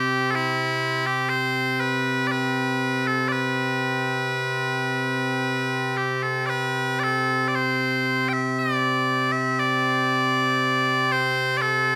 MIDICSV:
0, 0, Header, 1, 2, 480
1, 0, Start_track
1, 0, Key_signature, 0, "major"
1, 0, Tempo, 1000000
1, 148, Time_signature, 3, 2, 24, 8
1, 1592, Tempo, 1029160
1, 2072, Tempo, 1067616
1, 3512, Tempo, 1016949
1, 5592, End_track
2, 0, Start_track
2, 0, Title_t, "Bagpipes"
2, 0, Program_c, 0, 109
2, 0, Note_on_c, 0, 48, 89
2, 0, Note_on_c, 0, 60, 89
2, 0, Note_on_c, 0, 67, 70
2, 148, Note_off_c, 0, 67, 0
2, 148, Note_on_c, 0, 69, 70
2, 169, Note_off_c, 0, 69, 0
2, 169, Note_on_c, 0, 64, 70
2, 510, Note_off_c, 0, 64, 0
2, 510, Note_on_c, 0, 67, 66
2, 620, Note_off_c, 0, 67, 0
2, 620, Note_on_c, 0, 72, 72
2, 865, Note_off_c, 0, 72, 0
2, 865, Note_on_c, 0, 71, 65
2, 1091, Note_off_c, 0, 71, 0
2, 1091, Note_on_c, 0, 74, 63
2, 1111, Note_off_c, 0, 74, 0
2, 1111, Note_on_c, 0, 71, 63
2, 1472, Note_off_c, 0, 71, 0
2, 1472, Note_on_c, 0, 69, 59
2, 1576, Note_off_c, 0, 69, 0
2, 1576, Note_on_c, 0, 74, 57
2, 1595, Note_off_c, 0, 74, 0
2, 1595, Note_on_c, 0, 71, 57
2, 2802, Note_off_c, 0, 71, 0
2, 2802, Note_on_c, 0, 67, 42
2, 2919, Note_off_c, 0, 67, 0
2, 2919, Note_on_c, 0, 69, 45
2, 3023, Note_off_c, 0, 69, 0
2, 3023, Note_on_c, 0, 74, 60
2, 3039, Note_off_c, 0, 74, 0
2, 3039, Note_on_c, 0, 71, 60
2, 3264, Note_off_c, 0, 71, 0
2, 3264, Note_on_c, 0, 74, 67
2, 3281, Note_off_c, 0, 74, 0
2, 3281, Note_on_c, 0, 69, 67
2, 3481, Note_off_c, 0, 69, 0
2, 3481, Note_on_c, 0, 74, 49
2, 3514, Note_off_c, 0, 74, 0
2, 3514, Note_on_c, 0, 72, 64
2, 3861, Note_off_c, 0, 72, 0
2, 3861, Note_on_c, 0, 79, 63
2, 3881, Note_off_c, 0, 79, 0
2, 3881, Note_on_c, 0, 76, 63
2, 4002, Note_off_c, 0, 76, 0
2, 4002, Note_on_c, 0, 74, 67
2, 4347, Note_off_c, 0, 74, 0
2, 4347, Note_on_c, 0, 76, 73
2, 4476, Note_off_c, 0, 76, 0
2, 4476, Note_on_c, 0, 74, 74
2, 5197, Note_off_c, 0, 74, 0
2, 5197, Note_on_c, 0, 72, 82
2, 5411, Note_off_c, 0, 72, 0
2, 5411, Note_on_c, 0, 74, 74
2, 5431, Note_off_c, 0, 74, 0
2, 5431, Note_on_c, 0, 69, 74
2, 5592, Note_off_c, 0, 48, 0
2, 5592, Note_off_c, 0, 60, 0
2, 5592, Note_off_c, 0, 69, 0
2, 5592, End_track
0, 0, End_of_file